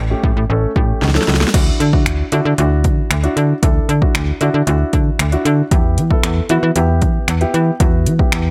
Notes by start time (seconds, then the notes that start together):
Already playing: A1
0.10 A3 C#4 G4
0.24 A2, kick
0.37 A2
0.50 A1 A3 C#4 A4
0.76 A2 A3 C#4 G4, kick
1.02 C#2, snare
1.08 snare
1.15 A3 C#4 A4, snare
1.21 snare
1.28 C#2, snare
1.34 snare
1.41 snare
1.47 snare
1.54 D2 D4 E4 F#4, kick, closed hi-hat, crash
1.80 D3, closed hi-hat
1.93 D4 E4 F#4, kick
2.06 D2, finger snap, closed hi-hat
2.32 D3 D4 E4 F#4, closed hi-hat
2.45 D3
2.58 D2 D4 E4 F#4, closed hi-hat
2.84 D3, kick, closed hi-hat
3.11 D2, finger snap, closed hi-hat
3.23 D4 E4 F#4, closed hi-hat
3.37 D3, closed hi-hat
3.62 D2 D4 E4 A4, kick, closed hi-hat
3.89 D3, closed hi-hat
4.02 D4 E4 F#4, kick
4.15 D2, finger snap, closed hi-hat
4.41 D3 D4 E4 F#4, closed hi-hat
4.54 D3
4.67 D2 D4 E4 F#4, closed hi-hat
4.93 D3, kick, closed hi-hat
5.19 D2, finger snap, closed hi-hat
5.32 D4 E4 F#4, closed hi-hat
5.45 D3, closed hi-hat
5.71 E2 B3 E4 G4, kick, closed hi-hat
5.97 E3, closed hi-hat
6.10 B3 E4 A4, kick
6.23 E2, finger snap, closed hi-hat
6.49 E3 B3 E4 F#4, closed hi-hat
6.63 E3
6.75 E2 B3 E4 G4, closed hi-hat
7.02 E3, kick, closed hi-hat
7.28 E2, finger snap, closed hi-hat
7.41 B3 E4 G4, closed hi-hat
7.54 E3, closed hi-hat
7.80 E2 B3 E4 F#4, kick, closed hi-hat
8.06 E3, closed hi-hat
8.19 B3 E4 G4, kick
8.32 E2, finger snap, closed hi-hat